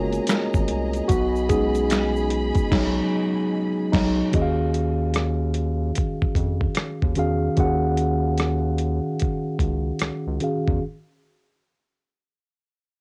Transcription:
Already playing: analog synth bass F#1, tine electric piano G#3 A#3 B3 C#4 F4 F#4 G#4 A#4 C#5, string section G#4 D#5 A#5
0.13 closed hi-hat, shaker
0.27 finger snap, snare, closed hi-hat, shaker
0.54 analog synth bass G#1, kick, shaker
0.68 analog synth bass C2, closed hi-hat
0.93 closed hi-hat, shaker
1.08 analog synth bass B1, tine electric piano B3 F#4, string section G#4 B5, kick, closed hi-hat, shaker
1.36 shaker
1.49 tine electric piano G#3 B3 C#4 D#4 G#4, kick, closed hi-hat, shaker
1.75 closed hi-hat, shaker
1.90 finger snap, snare, closed hi-hat, shaker
1.93 finger snap
2.16 shaker
2.30 closed hi-hat
2.54 kick, closed hi-hat, shaker
2.71 analog synth bass B1, tine electric piano F#3 D#4, kick, snare, crash
3.92 analog synth bass B1, tine electric piano F#3 D#4, kick, snare, crash
4.32 analog synth bass D#2, tine electric piano D#3 C#4 F#4 G#4 D#5, kick, closed hi-hat
4.42 tine electric piano F5
4.74 closed hi-hat
5.14 cross-stick, closed hi-hat
5.54 closed hi-hat
5.95 kick, closed hi-hat
6.22 kick
6.35 analog synth bass F2, kick, closed hi-hat
6.61 kick
6.75 cross-stick, closed hi-hat
7.02 analog synth bass D#2, kick
7.15 analog synth bass E2, tine electric piano D#3 C#4 F#4 G#4 F5, closed hi-hat
7.57 analog synth bass D#2, tine electric piano D#3 C#4 F#4 G#4 F#5, kick, closed hi-hat
7.97 closed hi-hat
8.38 cross-stick, closed hi-hat
8.78 closed hi-hat
9.20 kick, closed hi-hat
9.59 analog synth bass C#2, kick, closed hi-hat
9.99 analog synth bass C#2, cross-stick, closed hi-hat
10.27 analog synth bass C#2
10.40 tine electric piano D#3 C#4 F#4 G#4 F5, closed hi-hat
10.68 analog synth bass E2, kick

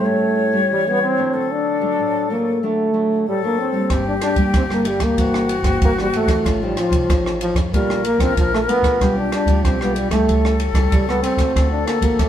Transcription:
Already playing: nylon-string guitar G3 C#4 E4, trombone A3
0.05 nylon-string guitar A2, flute C#5
0.53 nylon-string guitar G3 C#4 E4
0.71 nylon-string guitar E3, trombone G3
0.87 nylon-string guitar G3 C#4 E4, trombone B3
1.03 trombone C4
1.18 nylon-string guitar F#3 A3 D4
1.34 nylon-string guitar D3, flute A4
1.52 trombone D4
1.81 nylon-string guitar F#3 A3 D4
1.98 nylon-string guitar A2
2.30 nylon-string guitar F#3 A3 D4, trombone A#3
2.63 nylon-string guitar D3 F#3 A3 D4, trombone A3
2.94 nylon-string guitar F#3 A3 D4
3.26 nylon-string guitar A2, trombone G3, flute A4
3.43 nylon-string guitar F#3 A3 D4, trombone A#3
3.59 trombone C4
3.73 nylon-string guitar G3 A#3 D4
3.90 upright bass G1, nylon-string guitar G2, flute G4, kick, cross-stick, ride
4.08 trombone D4
4.21 trombone D4, cross-stick, ride
4.35 upright bass D2, nylon-string guitar G3 A#3 D4, kick, ride
4.54 upright bass G1, nylon-string guitar D3, trombone C4, kick, cross-stick, ride
4.70 nylon-string guitar G3 A#3 D4, trombone A#3, cross-stick
4.85 trombone G3, ride
4.99 upright bass D2, trombone A#3, kick, cross-stick, ride
5.18 upright bass G1, nylon-string guitar G2 E3 A#3 C4, flute F#4, kick, ride
5.34 cross-stick
5.49 ride
5.63 upright bass G1, nylon-string guitar E3 A#3 C4, kick, cross-stick, ride
5.82 upright bass G1, nylon-string guitar G2, trombone A#3, kick, ride
5.98 nylon-string guitar E3 A#3 C4, trombone G3, cross-stick
6.13 trombone A3, ride
6.26 upright bass E2, nylon-string guitar F3 C4 D#4, kick, cross-stick, ride
6.45 upright bass A1, nylon-string guitar A2, flute F4, kick, cross-stick, ride
6.62 nylon-string guitar F3 C4 D#4, trombone G3
6.77 trombone F3, cross-stick, ride
6.90 upright bass C2, kick, ride
7.10 upright bass A1, nylon-string guitar A2 F3 C4 D#4, kick, cross-stick, ride
7.26 cross-stick
7.41 trombone F3, ride
7.54 upright bass F2, kick, cross-stick, ride
7.71 upright bass A#1, nylon-string guitar A#2 A3 D4 F4, trombone G3, flute A#4, kick, ride
7.90 cross-stick
8.05 trombone A#3, ride
8.18 upright bass A#1, trombone C4, nylon-string guitar D4 F4, kick, cross-stick, ride
8.37 upright bass A#1, trombone F3, nylon-string guitar F3, kick, ride
8.53 trombone A3, cross-stick
8.68 nylon-string guitar A3 D4 F4, trombone B3, ride
8.82 upright bass A#2, kick, cross-stick, ride
9.01 upright bass B1, nylon-string guitar B2 G3 D4 F4, flute G4, kick, cross-stick, ride
9.17 trombone D4
9.32 trombone D4, cross-stick, ride
9.46 upright bass D2, nylon-string guitar G3 D4 F4, kick, ride
9.64 upright bass B1, nylon-string guitar B2, trombone C4, flute G4, kick, cross-stick, ride
9.81 nylon-string guitar G3 D4 F4, trombone B3, cross-stick
9.96 trombone G3, ride
10.10 upright bass D2, nylon-string guitar G3 A3 E4, trombone A3, kick, cross-stick, ride
10.28 upright bass C#2, nylon-string guitar C#3, flute A4, kick, ride
10.45 cross-stick
10.60 ride
10.73 upright bass C#2, nylon-string guitar G3 A3 E4, kick, cross-stick, ride
10.92 upright bass C#2, nylon-string guitar C#3, trombone G3, kick, ride
11.08 nylon-string guitar G3 A3 E4, trombone B3, cross-stick
11.23 trombone C4, ride
11.37 upright bass C#3, nylon-string guitar A3 C4 F#4, kick, cross-stick, ride
11.55 upright bass D2, nylon-string guitar D3, flute A4, kick, cross-stick, ride
11.71 trombone D4
11.86 trombone A#3, cross-stick, ride
12.00 upright bass A1, nylon-string guitar A3 C4 F#4, trombone A#3, kick, ride
12.19 upright bass D2, nylon-string guitar A2, trombone A3, kick, cross-stick, ride

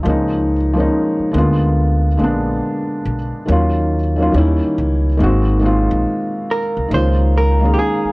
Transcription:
0.03 upright bass C#2, felt piano F3 G#3 A#3
0.08 felt piano C#4 D#4
0.73 felt piano F3 G#3 A#3
0.78 felt piano C#4 D#4
1.19 muted upright bass stroke
1.31 upright bass D2, felt piano D3 G#3 A#3
1.36 felt piano B3 F4
2.17 upright bass A#1, felt piano D3 G#3 A#3
2.22 felt piano B3 D4
3.05 upright bass B1
3.46 upright bass D#2, felt piano D#3 F#3 A#3
3.50 felt piano C#4 F4
4.16 felt piano D#3 F#3 A#3
4.20 felt piano C#4 F4
4.31 upright bass D#2, felt piano D#3 G3 A#3
4.36 felt piano C#4 E4
4.62 muted upright bass stroke
4.78 upright bass C#2
5.17 upright bass G#1, felt piano D#3 G#3 A#3
5.22 felt piano C4 F#4
5.59 felt piano D#3 G#3 A#3
5.64 felt piano C4 F4
5.91 upright bass A#1
6.51 hollow-body jazz guitar A#4
6.77 upright bass C2
6.88 upright bass C#2, felt piano D#3 G#3 A#3, ambient pad A#4 F5 G#5 A#5
6.93 felt piano C#4 F4, hollow-body jazz guitar C5
7.38 hollow-body jazz guitar A#4
7.59 felt piano D#3 G#3 A#3
7.64 felt piano C#4 G#4
7.74 hollow-body jazz guitar G4
7.79 hollow-body jazz guitar G#4
8.05 muted upright bass stroke

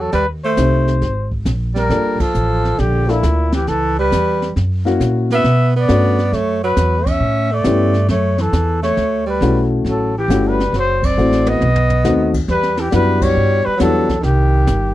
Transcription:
Already playing: upright bass E2
0.00 tenor saxophone F#3, trumpet A4
0.12 upright bass D#2, tenor saxophone G3, trumpet B4, brush sweep, snare
0.44 tenor saxophone A3, trumpet C5
0.57 upright bass C2, upright piano C4 D#4 G4 C5, snare, hi-hat pedal
0.88 snare
1.01 upright bass G#1, brush sweep, snare
1.32 kick
1.45 upright bass A#1, snare, hi-hat pedal
1.74 tenor saxophone G3, trumpet A#4, snare
1.89 upright bass G1, upright piano A#3 D4 F4 A4, brush sweep, snare
2.20 tenor saxophone F3, trumpet A4, muted upright bass stroke, kick, ride
2.34 upright bass A1, hi-hat pedal
2.65 snare
2.79 upright bass A#1, tenor saxophone D3, trumpet G4, brush sweep, snare
3.07 tenor saxophone A#2, upright piano A#3 D4 F4 A4, trumpet E4, snare
3.23 upright bass D2, snare, hi-hat pedal
3.52 tenor saxophone E3, trumpet G4, snare
3.67 upright bass C#2, tenor saxophone E3, trumpet A4, brush sweep, snare
3.98 tenor saxophone G3, trumpet B4
4.12 upright bass E2, snare, hi-hat pedal
4.42 snare
4.56 upright bass F#2, brush sweep, snare
4.85 upright piano A#3 C#4 E4 F#4, snare
5.00 upright bass A#2, snare, hi-hat pedal
5.30 tenor saxophone B3, trumpet E5, snare
5.44 upright bass B2, brush sweep, snare
5.76 tenor saxophone B3, trumpet D5
5.88 upright bass G2, upright piano A3 C#4 D4 F#4, snare, hi-hat pedal
6.18 snare
6.32 upright bass F#2, tenor saxophone A3, trumpet C#5, brush sweep, snare
6.64 tenor saxophone F#3, trumpet B4
6.77 upright bass E2, snare, hi-hat pedal
7.06 tenor saxophone C#4, trumpet E5, kick, ride
7.20 upright bass A2, brush sweep
7.52 tenor saxophone A3, trumpet D5
7.64 upright bass G2, upright piano B3 C#4 E4 G4, snare, hi-hat pedal
7.94 snare
8.08 upright bass F#2, tenor saxophone A3, trumpet C#5, brush sweep, snare
8.38 tenor saxophone E3, trumpet A4, snare
8.53 upright bass E2, snare, hi-hat pedal
8.82 tenor saxophone A3, trumpet C#5, snare
8.97 upright bass D2, brush sweep, snare
9.26 tenor saxophone G3, trumpet B4
9.41 upright bass B1, upright piano A3 C#4 E4 F#4, snare, hi-hat pedal
9.85 upright bass A1, tenor saxophone F#3, brush sweep, snare
9.90 trumpet A4
10.18 tenor saxophone E3, trumpet G4
10.28 upright bass G1, upright piano A3 C#4 E4 F#4, snare, hi-hat pedal
10.46 tenor saxophone G3, trumpet B4
10.60 snare
10.72 upright bass F#1, tenor saxophone F#3, brush sweep, snare
10.79 trumpet C5
11.03 tenor saxophone C4, trumpet D5, kick, ride
11.17 upright bass A1, upright piano A3 C4 E4 F#4, hi-hat pedal
11.32 snare
11.46 tenor saxophone B3, trumpet D#5, high tom
11.61 upright bass B1, floor tom
11.76 floor tom
11.90 floor tom
12.04 upright bass D#2, upright piano A3 C4 D#4 F#4, snare, hi-hat pedal
12.34 kick, crash
12.48 upright bass E2, tenor saxophone G3, trumpet B4, brush sweep, snare
12.63 snare
12.77 tenor saxophone E3, trumpet G4, snare
12.91 upright bass F#2, tenor saxophone G3, upright piano B3 D4 E4 F#4 G4, trumpet B4, snare, hi-hat pedal
13.21 tenor saxophone G3, trumpet C#5, kick, crash
13.36 upright bass G2, brush sweep
13.63 tenor saxophone G3, trumpet B4, muted upright bass stroke
13.77 upright bass E2, tenor saxophone F#3, upright piano G3 B3 D4 E4 F#4, snare, hi-hat pedal
13.81 trumpet A4
14.09 kick, snare
14.21 upright bass C2, tenor saxophone D#3, brush sweep, snare
14.25 trumpet G4
14.67 upright bass G1, snare, hi-hat pedal

